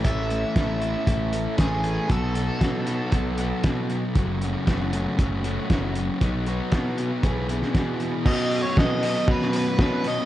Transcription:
<<
  \new Staff \with { instrumentName = "Overdriven electric guitar" } { \time 4/4 \key b \mixolydian \tempo 4 = 117 e''2. gis'4 | a'2.~ a'8 r8 | r1 | r1 |
\tuplet 3/2 { dis''4 cis''8 } dis''8 dis''8 b'8 b'8 b'8 dis''8 | }
  \new Staff \with { instrumentName = "Distorted electric guitar" } { \time 4/4 \key b \mixolydian <a, e a cis' a'>8 <a cis' a'>8 <e a cis' a'>8 <a, e a cis' a'>8 <e a cis' a'>8 <a cis' a'>8 <a, e a cis' a'>8 <a cis' a'>8 | <b, fis b dis' fis'>8 <b dis' fis'>8 <fis b dis' fis'>8 <b, fis b dis' fis'>8 <fis b dis' fis'>8 <b dis' fis'>8 <b, fis b dis' fis'>8 <b dis' fis'>8 | <fis, cis fis a cis' fis'>8 <fis a cis' fis'>8 <fis a cis' fis'>8 <fis, cis fis a cis' fis'>8 <fis a cis' fis'>8 <fis a cis' fis'>8 <fis, cis fis a cis' fis'>8 <fis a cis' fis'>8 | <b, fis b dis' fis'>8 <b dis' fis'>8 <fis b dis' fis'>8 <b, fis b dis' fis'>8 <b, e b e' gis'>8 <b e' gis'>8 <b, e b e' gis'>8 <b e' gis'>8 |
<b, fis b cis' fis'>4 <b, fis b cis' fis'>8 <b, fis b cis' fis'>8 <b, fis b cis' fis'>4 <b, fis b cis' fis'>8 <b, fis b cis' fis'>8 | }
  \new Staff \with { instrumentName = "Picked electric bass" } { \clef bass \time 4/4 \key b \mixolydian a,,4 a,,4 a,,4 a,,4 | b,,4 b,4 b,,4 b,4 | fis,,4 fis,,4 fis,,4 fis,,4 | b,,4 b,4 b,,4 b,4 |
b,4 b,4 b,4 b,4 | }
  \new DrumStaff \with { instrumentName = "Drums" } \drummode { \time 4/4 <hh bd>8 hh8 <hh bd sn>8 hh8 <hh bd>8 hh8 <hh bd sn>8 hh8 | <hh bd>8 hh8 <hh bd sn>8 hh8 <hh bd>8 hh8 <hh bd sn>8 hh8 | <hh bd>8 hh8 <hh bd sn>8 hh8 <hh bd>8 hh8 <hh bd sn>8 hh8 | <hh bd>8 hh8 <hh bd sn>8 hh8 <hh bd>8 hh16 sn16 <hh bd sn>8 hh8 |
<cymc bd>8 hho8 <bd sn>8 hho8 bd16 sn16 hho8 <bd sn>8 hho8 | }
>>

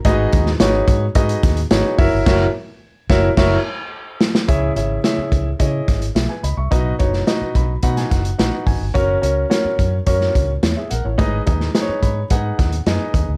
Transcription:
<<
  \new Staff \with { instrumentName = "Grand piano" } { \time 4/4 \key fis \mixolydian \tempo 4 = 108 << { r1 | r1 | r2. <gis' e''>16 <b' gis''>16 <dis'' b''>16 <e'' cis'''>16~ | <e'' cis'''>16 r4 r16 b''8 b''16 gis''16 fis''8 fis''8 gis''8 |
r2. <e' cis''>16 <gis' e''>16 <ais' fis''>16 <e' cis''>16~ | <e' cis''>16 r4 r16 b''8 gis''8 fis''8 gis''4 | } \\ { <dis' fis' gis' b' dis''>4 <dis' fis' gis' b' cis''>4 <dis' fis' gis' b' dis''>4 <dis' fis' gis' b' cis''>8 <e' fis' ais' cis'' e''>8 | <e' fis' ais' cis'' e''>8 r4 <e' fis' ais' cis'' e''>8 <e' fis' ais' cis'' e''>8 r4. | <e' gis' cis'' e''>8 <e' gis' cis'' e''>8 <e' gis' cis'' e''>4 <e' gis' cis'' dis''>4 r4 | <dis' fis' b' dis''>8 <dis' fis' b' cis''>8 <dis' fis' b' dis''>4 <dis' fis' b' fis''>4 <dis' fis' b'>4 |
<cis' fis' ais' cis''>8 <cis' fis' ais' cis''>8 <cis' fis' ais' cis''>4 <cis' fis' ais' cis''>4 r4 | <dis' gis' b' dis''>8 <dis' gis' b' dis''>8 <dis' gis' b' c'' cis''>4 <dis' gis' b' fis''>4 <dis' gis' b' dis''>4 | } >> }
  \new Staff \with { instrumentName = "Grand piano" } { \clef bass \time 4/4 \key fis \mixolydian gis,4. r2 r8 | r1 | cis4. r2 r8 | b,4. r2 r8 |
r1 | gis,4. r2 r8 | }
  \new Staff \with { instrumentName = "Fingered electric bass" } { \clef bass \time 4/4 \key fis \mixolydian gis,,8 dis,8 gis,,8 gis,8 gis,8 dis,8 gis,,16 r16 fis,,16 g,,16 | fis,,8 r4 fis,,8 fis,,8 r4. | cis,8 gis,,8 r8 cis,8 cis8 gis,,8 b,,16 r16 cis,16 c,16 | b,,8 fis,,8 r8 b,,8 b,8 fis,,8 ais,,16 r16 gis,,16 g,,16 |
fis,,8 cis,8 r8 fis,8 fis,8 cis,8 e,16 r16 ais,,16 a,,16 | gis,,8 dis,8 r8 gis,8 gis,8 dis,8 fis,16 r16 dis,16 d,16 | }
  \new DrumStaff \with { instrumentName = "Drums" } \drummode { \time 4/4 <hh bd>8 <hh bd>16 sn16 <hh sn>8 <hh bd>8 <hh bd>16 hh16 <hh bd sn>16 hh16 <hh sn>8 <hho bd>8 | <cymc bd sn>4 r8 <bd sn>8 <cymc bd sn>4 r8 sn16 sn16 | <hh bd>8 hh8 <hh sn>8 <hh bd>8 <hh bd>8 <hh bd sn>16 hh16 <hh sn>8 hh8 | <hh bd>8 <hh bd>16 sn16 <hh sn>8 <hh bd>8 <hh bd>16 <hh sn>16 <hh bd sn>16 hh16 <hh sn>8 <hho bd>8 |
<hh bd>8 hh8 <hh sn>8 <hh bd>8 <hh bd>16 sn16 <hh bd>8 <hh sn>8 hh8 | <hh bd>8 <hh bd>16 sn16 <hh sn>8 <hh bd>8 <hh bd>8 <hh bd sn>16 hh16 <hh sn>8 <hh bd>8 | }
>>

